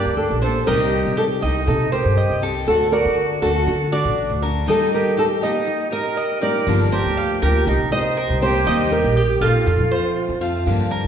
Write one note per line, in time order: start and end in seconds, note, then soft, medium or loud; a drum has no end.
0.00 0.42 A#3 soft
0.00 0.41 D4 soft
0.00 0.41 D4 medium
0.00 0.16 G4 medium
0.00 0.40 G4 soft
0.00 0.17 A#4 medium
0.05 0.29 D2 medium
0.17 0.41 D4 medium
0.17 0.40 A4 medium
0.30 0.66 A#1 medium
0.41 0.66 G3 medium
0.41 0.67 A#3 medium
0.41 0.66 D4 medium
0.41 0.66 G4 medium
0.41 0.66 A4 medium
0.41 0.67 C5 medium
0.66 1.03 C2 medium
0.66 1.41 C3 medium
0.66 1.41 D#3 medium
0.66 1.41 G3 medium
0.66 1.41 C4 medium
0.66 1.16 D#4 medium
0.66 1.13 G4 medium
0.66 1.40 G4 medium
0.66 1.18 A#4 medium
1.05 1.41 C3 medium
1.17 1.23 D#4 medium
1.17 1.41 G4 medium
1.17 1.25 A4 medium
1.41 1.66 C2 medium
1.41 1.66 D#3 soft
1.41 1.66 G3 medium
1.41 1.66 C4 medium
1.41 1.66 D#4 medium
1.41 1.66 G4 medium
1.41 1.91 D#5 medium
1.67 2.03 C3 loud
1.67 1.91 D#4 medium
1.67 1.92 A4 medium
1.67 muted steel-string acoustic guitar stroke medium
1.92 2.42 G3 soft
1.92 2.41 C4 soft
1.92 2.41 G4 soft
1.92 2.39 G4 medium
1.92 2.39 A#4 medium
1.92 2.16 C5 medium
2.05 2.29 G2 medium
2.17 2.42 D#5 medium
2.30 2.65 C2 medium
2.42 2.66 D#3 medium
2.42 2.67 G3 medium
2.42 2.66 C4 medium
2.42 2.66 G4 medium
2.42 2.91 A4 medium
2.67 3.03 D2 medium
2.67 3.41 D3 medium
2.67 3.42 D4 medium
2.67 2.90 F#4 medium
2.67 3.41 F#4 medium
2.67 2.92 A4 loud
2.91 3.38 F#4 medium
2.91 3.39 A#4 loud
2.91 3.41 D5 medium
3.05 3.40 D3 medium
3.40 3.66 D2 medium
3.40 3.67 D4 medium
3.40 3.87 F#4 medium
3.40 3.66 F#4 medium
3.40 3.89 A4 loud
3.40 3.91 A4 medium
3.45 3.67 A3 soft
3.67 4.03 D3 loud
3.67 muted steel-string acoustic guitar stroke medium
3.91 4.42 A3 soft
3.91 4.38 D4 medium
3.91 4.41 D4 medium
3.91 4.42 D4 soft
3.91 4.41 F#4 medium
3.91 4.39 F#4 medium
4.05 4.29 A1 medium
4.30 4.65 D2 medium
4.42 4.67 A3 medium
4.42 4.67 D4 medium
4.42 4.66 F#4 medium
4.42 4.67 A#4 medium
4.66 5.41 D#3 medium
4.66 5.41 G3 medium
4.66 5.41 A#3 medium
4.66 5.16 D#4 medium
4.66 5.41 D#4 medium
4.66 4.91 D#4 medium
4.66 5.40 G4 medium
4.66 4.92 A4 loud
4.94 5.16 G4 medium
4.94 5.18 A#4 medium
5.17 5.23 D#4 medium
5.17 5.41 G4 medium
5.17 5.25 A4 medium
5.41 5.66 G3 medium
5.41 5.66 A#3 medium
5.41 5.88 D#4 medium
5.41 5.66 D#4 medium
5.41 5.66 G4 medium
5.41 6.14 G4 medium
5.41 5.91 D#5 medium
5.67 muted steel-string acoustic guitar stroke medium
5.91 6.42 A#3 soft
5.91 6.41 D#4 soft
5.91 6.40 G4 soft
5.91 6.38 A#4 medium
5.91 6.16 A#4 medium
5.91 6.42 D#5 loud
6.17 6.41 D#5 medium
6.41 6.67 G3 medium
6.41 6.66 A#3 medium
6.41 6.66 D#4 medium
6.41 6.65 G4 medium
6.41 6.88 A#4 medium
6.41 6.66 D5 medium
6.41 6.89 D5 loud
6.67 7.02 G1 medium
6.67 7.41 D3 medium
6.67 7.41 F3 medium
6.67 7.41 A#3 medium
6.67 7.42 D4 medium
6.67 7.41 G4 medium
6.92 7.39 G4 medium
6.92 7.16 A#4 medium
6.92 7.44 C5 medium
7.05 7.40 D2 medium
7.17 7.41 F5 medium
7.41 7.66 D2 medium
7.41 7.67 F3 medium
7.41 7.67 A#3 medium
7.41 7.66 D4 medium
7.41 7.65 G4 medium
7.41 7.66 G4 medium
7.41 7.90 A#4 medium
7.41 7.65 A#4 medium
7.67 7.79 C2 loud
7.67 7.90 D#4 medium
7.67 7.93 G4 medium
7.67 muted steel-string acoustic guitar stroke medium
7.80 8.27 C3 medium
7.92 8.42 A#3 soft
7.92 8.41 C4 soft
7.92 8.16 D#4 medium
7.92 8.40 G4 soft
7.92 8.39 C5 medium
7.92 8.39 D#5 loud
8.17 8.65 A#4 medium
8.30 8.65 C2 medium
8.42 8.65 D#3 medium
8.42 8.66 A#3 medium
8.42 8.66 C4 medium
8.42 8.66 G4 medium
8.42 8.89 G4 medium
8.42 8.89 C5 loud
8.66 9.02 D#2 loud
8.66 9.40 D#3 medium
8.66 9.41 G3 medium
8.66 9.41 A#3 medium
8.66 9.15 D#4 medium
8.66 9.41 D#4 medium
8.66 9.40 G4 medium
8.92 9.39 G4 medium
8.92 9.38 A#4 medium
9.04 9.40 A#1 medium
9.17 9.41 G4 medium
9.41 9.65 A#1 medium
9.41 9.67 G3 medium
9.41 9.66 A#3 medium
9.41 9.66 D#4 medium
9.41 9.90 F4 medium
9.41 10.38 F4 medium
9.41 9.65 G4 medium
9.41 10.38 A4 medium
9.66 9.78 F2 loud
9.66 muted steel-string acoustic guitar stroke medium
9.79 10.26 F3 medium
9.91 10.41 A3 soft
9.91 10.40 C4 soft
9.91 10.40 F4 medium
9.91 10.40 C5 medium
10.29 10.64 F2 medium
10.41 10.66 F3 medium
10.41 10.66 A3 medium
10.41 10.65 C4 medium
10.41 10.65 F4 medium
10.41 10.90 F5 medium
10.66 11.02 G2 loud
10.66 11.07 D3 medium
10.66 11.07 F3 medium
10.66 11.07 A#3 medium
10.66 11.07 D4 medium
10.66 11.07 G4 medium
10.91 11.07 A#4 medium
11.04 11.07 D2 medium